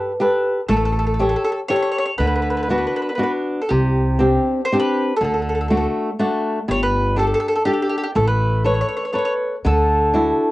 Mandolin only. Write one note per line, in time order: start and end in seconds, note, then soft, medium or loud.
0.69 0.75 A4 medium
0.77 0.84 A4 medium
0.85 0.91 A4 medium
0.92 0.98 A4 soft
0.99 1.06 A4 medium
1.07 1.13 A4 soft
1.14 1.21 A4 soft
1.22 1.28 A4 soft
1.29 1.35 A4 medium
1.36 1.43 A4 medium
1.45 1.51 A4 medium
1.52 1.59 A4 medium
1.68 1.75 C#5 medium
1.76 1.81 C#5 medium
1.82 1.90 C#5 medium
1.92 1.97 C#5 medium
1.98 2.04 C#5 medium
2.06 2.13 C#5 medium
2.18 2.26 B4 medium
2.27 2.34 B4 medium
2.36 2.41 B4 medium
2.42 2.49 B4 soft
2.50 2.56 B4 medium
2.57 2.62 B4 soft
2.63 2.69 B4 soft
2.70 2.77 B4 soft
2.78 2.86 B4 soft
2.87 2.94 B4 soft
2.96 3.01 B4 medium
3.02 3.08 B4 soft
3.09 3.14 B4 soft
3.15 3.22 B4 soft
3.23 3.31 B4 medium
3.62 3.69 A4 medium
3.69 4.66 G4 medium
4.65 4.79 C5 medium
4.80 5.15 B4 medium
5.17 5.23 A4 medium
5.24 5.33 A4 medium
5.34 5.41 A4 soft
5.42 5.48 A4 soft
5.49 5.54 A4 medium
5.55 5.60 A4 soft
5.61 5.67 A4 soft
5.68 5.76 A4 soft
5.77 5.85 A4 soft
6.71 6.81 C#5 loud
6.83 7.15 B4 medium
7.19 7.26 A4 medium
7.27 7.33 A4 soft
7.34 7.39 A4 medium
7.40 7.47 A4 medium
7.48 7.54 A4 medium
7.56 7.62 A4 medium
7.65 7.72 G4 medium
7.73 7.81 G4 medium
7.82 7.88 G4 medium
7.89 7.96 G4 medium
7.98 8.02 G4 medium
8.03 8.10 G4 medium
8.16 8.27 A4 medium
8.27 8.65 B4 medium
8.66 8.73 C#5 medium
8.74 8.80 C#5 soft
8.81 8.87 C#5 medium
8.89 8.96 C#5 medium
8.97 9.03 C#5 medium
9.05 9.11 C#5 soft
9.13 9.17 C#5 soft
9.19 9.24 C#5 soft
9.25 9.33 C#5 medium
9.66 10.52 A4 medium